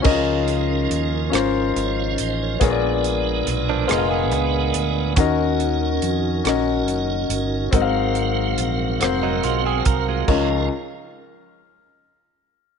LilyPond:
<<
  \new Staff \with { instrumentName = "Grand piano" } { \time 6/8 \key des \major \tempo 4. = 47 <des' ees' f' bes' ees''>4 r8 <des' f' bes' c''>4 r8 | <ces' aes' bes' des'' d''>4 r8 <ces' aes' bes' ees'' f''>4 r8 | <des' ges' bes' ees''>4 r8 <des' ges' bes' ees''>4 r8 | <c' ges' bes' ees'' f''>4 r8 <c' ges' bes' c''>4 r8 |
<des' f' bes' ees''>8 r2 r8 | }
  \new Staff \with { instrumentName = "Grand piano" } { \clef bass \time 6/8 \key des \major des4. r4. | bes,4. r4. | ees4. r4. | aes,4. r4. |
des,8 r2 r8 | }
  \new Staff \with { instrumentName = "Tonewheel organ" } { \time 6/8 \key des \major << { <c'' ees''>16 r4. r16 <bes' des''>16 <des'' f''>16 <c'' ees''>16 <bes' des''>16~ | <bes' des''>16 r2 r8. | r2. | r2. |
r2. | } \\ { <ees f des' ees' bes'>2. | <aes ces' d' bes'>2. | <f des' ees' ges' bes'>2. | <ges c' bes' f''>2. |
<f des' ees' bes'>8 r2 r8 | } >> }
  \new Staff \with { instrumentName = "Clean electric guitar" } { \time 6/8 \key des \major r2. | r4 r16 <f d'>16 <aes f'>16 <ces' aes'>4~ <ces' aes'>16 | r2. | r4. r16 <ges ees'>16 <aes f'>16 <c' aes'>16 bes'16 <aes f'>16~ |
<aes f'>16 r2 r8. | }
  \new Staff \with { instrumentName = "Fingered electric bass" } { \clef bass \time 6/8 \key des \major des,4 ees,8 aes,,8 aes,,8 a,,8 | bes,,4 ces,8 f,,8 des,8 d,8 | ees,4 f,8 bes,,8 ges,,8 g,,8 | aes,,4 bes,,8 f,,8 ces,8 c,8 |
des,8 r2 r8 | }
  \new DrumStaff \with { instrumentName = "Drums" } \drummode { \time 6/8 <cymc bd>8 hh8 hh8 <hh ss>8 hh8 hh8 | <hh bd>8 hh8 <hh ss>8 <hh ss>8 hh8 hh8 | <hh bd>8 hh8 hh8 <hh ss>8 hh8 hh8 | <hh bd>8 hh8 hh8 <hh ss>8 hh8 <hh bd>8 |
<cymc bd>4. r4. | }
>>